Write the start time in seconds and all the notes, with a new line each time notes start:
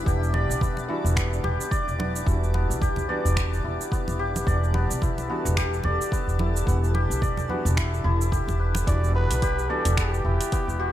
Already playing: E3 G3 B3 D4 E4 F#4 D5
0.04 E1 E3 G3 B3 D4 G4 D5, kick, cabasa
0.08 F#5
0.23 cabasa
0.34 D5, muted conga
0.49 B1, cabasa
0.61 B3, kick, low conga, cabasa
0.77 muted conga, cabasa
0.88 E3 G3 B3 D4 E4 F#4
1.05 E1, cabasa
1.16 B3, finger snap, kick, cabasa
1.33 cabasa
1.44 E1 G4, muted conga
1.61 cabasa
1.71 D5, kick, cabasa
1.88 E1, cabasa
1.99 B3, muted conga, high conga
2.16 cabasa
2.24 E1 E3 G3 B3 D4 E4, kick, cabasa
2.28 F#4
2.44 cabasa
2.54 B3, muted conga
2.70 B1, cabasa
2.82 G4, kick, low conga, cabasa
2.96 muted conga, low conga, cabasa
3.08 E3 G3 B3 D4 F#4 D5
3.25 E1, cabasa
3.36 B3, finger snap, kick, cabasa
3.54 cabasa
3.64 E1 E4
3.81 cabasa
3.92 B3, kick, cabasa
4.08 E1, muted conga, cabasa
4.19 G4
4.36 muted conga, cabasa
4.45 E1 E3 G3 B3 D4 A4 D5 F#5, kick, cabasa
4.64 cabasa
4.74 B3, muted conga
4.90 B1, cabasa
5.02 E4, kick, low conga, cabasa
5.18 muted conga, cabasa
5.28 E3 G3 B3 D4 F#4
5.45 E1, cabasa
5.57 G4, finger snap, kick, cabasa
5.74 cabasa
5.83 E1 D5, muted conga
6.01 cabasa
6.12 B3, kick, cabasa
6.27 E1, cabasa
6.39 E4, muted conga, high conga
6.56 cabasa
6.65 E1 E3 G3 B3 D4 F#5, kick, high conga, cabasa
6.84 cabasa
6.94 G4, muted conga, high conga
7.10 B1, cabasa
7.22 D5, kick, low conga, cabasa
7.37 muted conga, low conga, cabasa
7.49 E3 G3 B3 D4 F#4, high conga
7.65 E1, cabasa
7.76 E4, finger snap, kick, cabasa
7.94 cabasa
8.04 E1 E4
8.21 cabasa
8.32 G4, kick, cabasa
8.48 E1, muted conga, cabasa
8.59 B4
8.75 muted conga, cabasa
8.85 E1 E3 G3 B3 D4 E4 D5, kick, closed hi-hat, cabasa
8.89 F#4
9.04 cabasa
9.15 B3 B4
9.30 B1, closed hi-hat, cabasa
9.42 G4, kick, closed hi-hat, cabasa
9.59 cabasa
9.68 E3 G3 B3 D4 F#4 A4 D5
9.85 E1, closed hi-hat, cabasa
9.97 B3 G4, finger snap, kick, closed hi-hat, cabasa
10.14 cabasa
10.25 E1 E4
10.41 closed hi-hat, cabasa
10.52 B3, kick, closed hi-hat, cabasa
10.68 E1, cabasa
10.79 F#4 G4